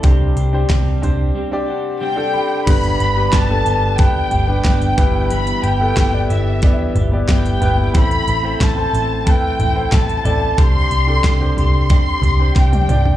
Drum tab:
CC |----------------|x---------------|----------------|----------------|
HH |x-x-x-x---------|xxx-x-x-x-x-xxx-|xxx-x-x-x-x-xxx-|xxx-x-x-x-x-xxx-|
SD |----o-----------|----o-------o---|----o-------o---|----o-------o---|
T1 |----------------|----------------|----------------|----------------|
T2 |----------------|----------------|----------------|----------------|
FT |------o---------|----------o---o-|----------o---o-|----------o---o-|
BD |o---o-----------|o---o---o---o-o-|----o---o---o---|o---o---o---o---|

CC |----------------|
HH |x-x-x-x-x-x-xxx-|
SD |----o-------o---|
T1 |-------------o--|
T2 |--------------o-|
FT |------o---o----o|
BD |o---o---o---o---|